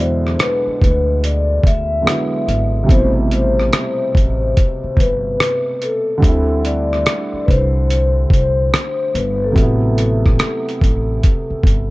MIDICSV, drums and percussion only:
0, 0, Header, 1, 2, 480
1, 0, Start_track
1, 0, Tempo, 833333
1, 1666, Time_signature, 4, 2, 24, 8
1, 6857, End_track
2, 0, Start_track
2, 0, Title_t, "Drums"
2, 153, Note_on_c, 9, 37, 32
2, 211, Note_off_c, 9, 37, 0
2, 227, Note_on_c, 9, 42, 74
2, 230, Note_on_c, 9, 37, 104
2, 284, Note_off_c, 9, 42, 0
2, 288, Note_off_c, 9, 37, 0
2, 470, Note_on_c, 9, 36, 92
2, 483, Note_on_c, 9, 42, 58
2, 527, Note_off_c, 9, 36, 0
2, 541, Note_off_c, 9, 42, 0
2, 713, Note_on_c, 9, 42, 82
2, 770, Note_off_c, 9, 42, 0
2, 942, Note_on_c, 9, 36, 94
2, 961, Note_on_c, 9, 42, 71
2, 999, Note_off_c, 9, 36, 0
2, 1018, Note_off_c, 9, 42, 0
2, 1194, Note_on_c, 9, 37, 122
2, 1206, Note_on_c, 9, 42, 87
2, 1251, Note_off_c, 9, 37, 0
2, 1263, Note_off_c, 9, 42, 0
2, 1432, Note_on_c, 9, 42, 65
2, 1489, Note_off_c, 9, 42, 0
2, 1665, Note_on_c, 9, 36, 111
2, 1674, Note_on_c, 9, 42, 77
2, 1723, Note_off_c, 9, 36, 0
2, 1731, Note_off_c, 9, 42, 0
2, 1909, Note_on_c, 9, 42, 74
2, 1966, Note_off_c, 9, 42, 0
2, 2071, Note_on_c, 9, 37, 35
2, 2128, Note_off_c, 9, 37, 0
2, 2146, Note_on_c, 9, 42, 71
2, 2150, Note_on_c, 9, 37, 108
2, 2204, Note_off_c, 9, 42, 0
2, 2207, Note_off_c, 9, 37, 0
2, 2389, Note_on_c, 9, 36, 86
2, 2403, Note_on_c, 9, 42, 57
2, 2447, Note_off_c, 9, 36, 0
2, 2460, Note_off_c, 9, 42, 0
2, 2632, Note_on_c, 9, 42, 83
2, 2634, Note_on_c, 9, 36, 98
2, 2690, Note_off_c, 9, 42, 0
2, 2691, Note_off_c, 9, 36, 0
2, 2862, Note_on_c, 9, 36, 83
2, 2881, Note_on_c, 9, 42, 68
2, 2919, Note_off_c, 9, 36, 0
2, 2938, Note_off_c, 9, 42, 0
2, 3112, Note_on_c, 9, 37, 115
2, 3124, Note_on_c, 9, 42, 91
2, 3170, Note_off_c, 9, 37, 0
2, 3181, Note_off_c, 9, 42, 0
2, 3350, Note_on_c, 9, 42, 63
2, 3408, Note_off_c, 9, 42, 0
2, 3586, Note_on_c, 9, 36, 110
2, 3595, Note_on_c, 9, 42, 76
2, 3643, Note_off_c, 9, 36, 0
2, 3652, Note_off_c, 9, 42, 0
2, 3829, Note_on_c, 9, 42, 78
2, 3887, Note_off_c, 9, 42, 0
2, 3991, Note_on_c, 9, 37, 33
2, 4049, Note_off_c, 9, 37, 0
2, 4066, Note_on_c, 9, 42, 85
2, 4070, Note_on_c, 9, 37, 109
2, 4124, Note_off_c, 9, 42, 0
2, 4127, Note_off_c, 9, 37, 0
2, 4309, Note_on_c, 9, 36, 84
2, 4323, Note_on_c, 9, 42, 57
2, 4367, Note_off_c, 9, 36, 0
2, 4381, Note_off_c, 9, 42, 0
2, 4553, Note_on_c, 9, 42, 87
2, 4610, Note_off_c, 9, 42, 0
2, 4782, Note_on_c, 9, 36, 97
2, 4801, Note_on_c, 9, 42, 66
2, 4839, Note_off_c, 9, 36, 0
2, 4858, Note_off_c, 9, 42, 0
2, 5033, Note_on_c, 9, 37, 114
2, 5044, Note_on_c, 9, 42, 88
2, 5090, Note_off_c, 9, 37, 0
2, 5102, Note_off_c, 9, 42, 0
2, 5271, Note_on_c, 9, 42, 66
2, 5329, Note_off_c, 9, 42, 0
2, 5505, Note_on_c, 9, 36, 106
2, 5515, Note_on_c, 9, 42, 75
2, 5563, Note_off_c, 9, 36, 0
2, 5573, Note_off_c, 9, 42, 0
2, 5748, Note_on_c, 9, 42, 77
2, 5806, Note_off_c, 9, 42, 0
2, 5908, Note_on_c, 9, 36, 86
2, 5910, Note_on_c, 9, 37, 29
2, 5965, Note_off_c, 9, 36, 0
2, 5968, Note_off_c, 9, 37, 0
2, 5986, Note_on_c, 9, 42, 73
2, 5989, Note_on_c, 9, 37, 111
2, 6044, Note_off_c, 9, 42, 0
2, 6047, Note_off_c, 9, 37, 0
2, 6155, Note_on_c, 9, 42, 39
2, 6213, Note_off_c, 9, 42, 0
2, 6229, Note_on_c, 9, 36, 93
2, 6242, Note_on_c, 9, 42, 64
2, 6287, Note_off_c, 9, 36, 0
2, 6299, Note_off_c, 9, 42, 0
2, 6471, Note_on_c, 9, 42, 82
2, 6473, Note_on_c, 9, 36, 101
2, 6529, Note_off_c, 9, 42, 0
2, 6531, Note_off_c, 9, 36, 0
2, 6702, Note_on_c, 9, 36, 92
2, 6721, Note_on_c, 9, 42, 69
2, 6759, Note_off_c, 9, 36, 0
2, 6778, Note_off_c, 9, 42, 0
2, 6857, End_track
0, 0, End_of_file